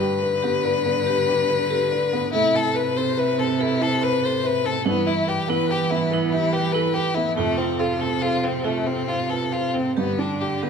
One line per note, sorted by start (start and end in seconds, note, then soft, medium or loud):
0.00 2.29 G2 medium
0.00 2.30 D3 medium
0.00 0.35 G4 medium
0.00 2.29 B4 medium
0.00 0.13 G5 medium
0.23 0.56 B4 medium
0.42 0.77 B3 medium
0.42 0.55 G4 loud
0.64 0.99 B4 medium
0.64 0.77 D5 medium
0.85 1.19 B3 medium
0.85 0.98 D5 medium
1.06 1.19 G4 loud
1.06 1.40 B4 medium
1.28 1.62 G4 medium
1.28 1.41 B4 medium
1.50 1.62 B4 medium
1.50 1.83 B4 medium
1.70 1.83 G4 loud
1.70 1.91 A4 medium
1.92 2.25 B4 medium
1.92 2.04 D5 medium
2.13 2.34 B3 medium
2.33 4.83 A2 medium
2.33 4.89 C3 loud
2.33 2.57 E4 medium
2.33 2.46 A4 loud
2.54 2.88 E4 medium
2.54 2.77 A4 medium
2.54 2.68 A5 medium
2.75 3.09 B4 medium
2.75 2.98 B4 medium
2.96 3.30 C4 medium
2.96 3.10 A4 loud
2.96 3.20 C5 medium
3.17 3.51 B4 medium
3.17 3.40 B4 medium
3.17 3.31 E5 medium
3.38 3.72 C4 medium
3.38 3.63 A4 medium
3.38 3.52 E5 medium
3.59 3.83 E4 medium
3.59 3.73 A4 loud
3.59 3.93 B4 medium
3.80 4.14 E4 medium
3.80 4.05 A4 medium
3.80 3.95 C5 medium
4.01 4.26 B4 medium
4.01 4.36 C5 medium
4.01 4.15 C5 medium
4.23 4.36 A4 loud
4.23 4.44 B4 medium
4.23 4.48 C5 medium
4.43 4.67 B4 medium
4.43 4.77 C5 medium
4.43 4.57 E5 medium
4.64 4.86 C4 medium
4.64 4.87 A4 medium
4.86 7.34 G2 medium
4.86 7.38 E3 medium
4.86 5.08 B3 medium
4.86 4.99 E4 loud
5.06 5.40 E4 medium
5.06 5.30 E4 medium
5.06 5.20 E5 medium
5.27 5.50 G4 medium
5.27 5.62 B4 medium
5.48 5.83 B3 medium
5.48 5.62 E4 loud
5.48 5.72 B4 medium
5.69 5.92 G4 medium
5.69 6.03 B4 medium
5.69 5.84 B4 medium
5.90 6.24 B3 medium
5.90 6.13 E4 medium
5.90 6.05 B4 medium
6.11 6.33 B3 medium
6.11 6.26 E4 loud
6.11 6.45 B4 medium
6.32 6.54 E4 medium
6.32 6.66 E4 medium
6.32 6.46 G4 medium
6.53 6.74 G4 medium
6.53 6.67 G4 medium
6.53 6.87 B4 medium
6.72 6.87 E4 loud
6.72 6.96 A4 medium
6.72 6.95 B4 medium
6.94 7.16 G4 medium
6.94 7.29 B4 medium
6.94 7.08 B4 medium
7.15 7.38 B3 medium
7.15 7.36 E4 medium
7.37 9.93 F2 medium
7.37 9.99 C3 medium
7.37 7.59 A3 medium
7.37 7.50 F4 loud
7.58 7.81 C4 medium
7.58 7.93 F4 medium
7.58 7.72 F5 medium
7.79 8.01 F4 medium
7.79 8.14 A4 medium
8.00 8.35 C4 medium
8.00 8.14 F4 medium
8.00 8.23 A4 medium
8.22 8.45 F4 medium
8.22 8.57 A4 medium
8.22 8.35 C5 medium
8.44 8.78 C4 medium
8.44 8.66 C4 medium
8.44 8.57 C5 medium
8.64 8.88 A3 medium
8.64 8.77 F4 medium
8.64 9.00 A4 medium
8.86 9.10 C4 medium
8.86 9.22 F4 medium
8.86 9.00 A4 medium
9.08 9.31 F4 medium
9.08 9.21 A4 medium
9.08 9.44 C5 medium
9.29 9.43 F4 medium
9.29 9.54 A4 medium
9.29 9.53 B4 medium
9.52 9.75 F4 medium
9.52 9.66 C5 medium
9.52 9.88 C5 medium
9.74 9.96 C4 medium
9.74 9.97 C4 medium
9.97 10.70 G2 medium
9.97 10.70 D3 medium
9.97 10.21 B3 medium
9.97 10.10 G4 medium
10.19 10.54 D4 medium
10.19 10.42 D4 medium
10.19 10.32 G5 medium
10.41 10.70 G4 medium
10.41 10.64 G4 medium
10.63 10.70 B3 soft
10.63 10.70 G4 medium
10.63 10.70 B4 medium